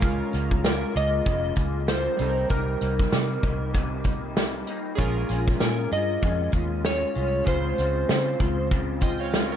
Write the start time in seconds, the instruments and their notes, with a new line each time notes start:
Already playing: fingered electric bass C#2, synth keys G#3 C#4 F4 A#4 F5
0.01 clean electric guitar C#3 G#3 A#3 F4, kick, closed hi-hat, tambourine
0.32 fingered electric bass C#2, clean electric guitar G#3 A#3 F4, closed hi-hat, tambourine
0.51 kick
0.63 clean electric guitar C#3 G#3 A#3 F4, electric slide guitar A#4, snare, closed hi-hat, tambourine
0.94 fingered electric bass C#2, clean electric guitar G#3 A#3 F4, electric slide guitar D#5, closed hi-hat
1.25 fingered electric bass F1, clean electric guitar C#3 G#3 A#3 F4, kick, closed hi-hat
1.56 fingered electric bass C#2, clean electric guitar G#3 A#3 F4, kick, closed hi-hat, tambourine
1.87 clean electric guitar C#3 G#3 A#3 F4, electric slide guitar C5, snare, closed hi-hat, tambourine
2.17 fingered electric bass C2, synth keys G3 C4 D#4, clean electric guitar G3 A#3 D#4, open hi-hat, tambourine
2.22 synth keys A4
2.28 synth keys A#4
2.49 fingered electric bass C2, clean electric guitar C3 G3 A#3 D#4, electric slide guitar A#4, kick, closed hi-hat, tambourine
2.81 fingered electric bass C2, clean electric guitar G3 A#3 D#4, closed hi-hat, tambourine
2.99 kick, snare
3.11 clean electric guitar C3 G3 A#3 D#4, fingered electric bass C3, snare, closed hi-hat, tambourine
3.43 fingered electric bass C2, clean electric guitar G3 A#3 D#4, kick, closed hi-hat
3.74 clean electric guitar C3 G3 A#3 D#4, kick, closed hi-hat
4.04 clean electric guitar G3 A#3 D#4, kick, closed hi-hat, tambourine
4.35 clean electric guitar C3 G3 A#3 D#4, snare, closed hi-hat, tambourine
4.67 clean electric guitar G3 A#3 D#4, closed hi-hat, tambourine
4.95 fingered electric bass A#1, clean electric guitar A#2 G#3 C#4 F4, synth keys C#4 F4 G#4, kick, closed hi-hat, tambourine
5.00 synth keys A#4
5.29 fingered electric bass A#1, clean electric guitar G#3 C#4 F4, closed hi-hat, tambourine
5.48 kick, snare
5.60 clean electric guitar A#2 G#3 C#4 F4, fingered electric bass A#2, electric slide guitar A#4, snare, closed hi-hat, tambourine
5.91 fingered electric bass G2, clean electric guitar C#4 F4, electric slide guitar D#5, closed hi-hat, tambourine
6.22 fingered electric bass F2, clean electric guitar A#2 G#3 C#4 F4, kick, closed hi-hat, tambourine
6.52 fingered electric bass D#2, clean electric guitar G#3 C#4 F4, kick, closed hi-hat, tambourine
6.84 clean electric guitar A#2 G#3 C#4 F4, electric slide guitar C#5, snare, closed hi-hat, tambourine
7.15 fingered electric bass C2, clean electric guitar G#3 C#4 F4, open hi-hat, tambourine
7.44 fingered electric bass C#2, clean electric guitar C#3 G#3 C4 F4, synth keys G#3 C#4 F4, electric slide guitar C5, kick, closed hi-hat, tambourine
7.49 synth keys C5
7.78 fingered electric bass C#2, clean electric guitar G#3 C4 F4, closed hi-hat, tambourine
8.09 clean electric guitar C#3 G#3 C4 F4, fingered electric bass C#3, snare, closed hi-hat, tambourine
8.40 fingered electric bass C#2, clean electric guitar G#3 C4 F4, kick, closed hi-hat
8.71 clean electric guitar C#3 G#3 C4 F4, kick, closed hi-hat, tambourine
9.01 clean electric guitar G#3 C4 F4, synth keys D#5 G5, kick, closed hi-hat, tambourine
9.20 synth keys C#5 F5
9.33 clean electric guitar C#3 G#3 C4 F4, snare, closed hi-hat, tambourine
9.52 synth keys A#4 C#5